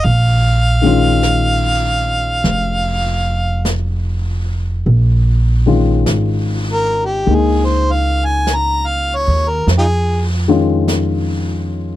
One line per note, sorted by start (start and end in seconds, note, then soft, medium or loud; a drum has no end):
0.03 2.40 A#1 medium
0.03 3.66 F5 medium
0.03 brush sweep soft
0.81 4.85 D#3 soft
0.81 4.86 G#3 soft
0.81 4.87 C#4 soft
0.86 4.88 F4 medium
1.23 brush sweep soft
1.23 snare soft
1.23 hi-hat pedal soft
2.44 4.82 F1 medium
2.44 brush sweep soft
2.44 snare soft
3.65 brush sweep soft
3.65 snare soft
3.65 hi-hat pedal medium
4.86 6.03 A#1 medium
4.86 brush sweep soft
5.66 9.68 D#3 soft
5.66 7.25 G#3 soft
5.66 9.68 C#4 soft
5.66 9.69 F4 soft
6.06 7.24 G#1 medium
6.06 brush sweep soft
6.06 snare soft
6.06 hi-hat pedal soft
6.73 7.07 A#4 medium
7.05 7.37 G4 medium
7.26 9.24 C#2 medium
7.26 9.68 G#3 soft
7.26 9.69 A#3 soft
7.26 9.69 D#4 soft
7.26 brush sweep soft
7.35 7.67 G#4 medium
7.65 7.94 C5 medium
7.92 8.27 F5 medium
8.25 8.57 G#5 medium
8.47 brush sweep soft
8.47 snare soft
8.47 hi-hat pedal soft
8.56 8.88 A#5 medium
8.87 9.18 F5 medium
9.16 9.50 C#5 medium
9.28 9.65 D#2 medium
9.49 9.68 A#4 medium
9.67 11.96 F2 medium
9.67 brush sweep soft
9.67 snare soft
9.78 9.86 D#4 soft
9.78 9.85 F4 soft
9.78 10.23 G#4 medium
10.48 11.96 D#3 soft
10.48 11.96 G#3 soft
10.48 11.96 C#4 soft
10.48 11.96 F4 medium
10.88 brush sweep soft
10.88 snare soft
10.88 hi-hat pedal medium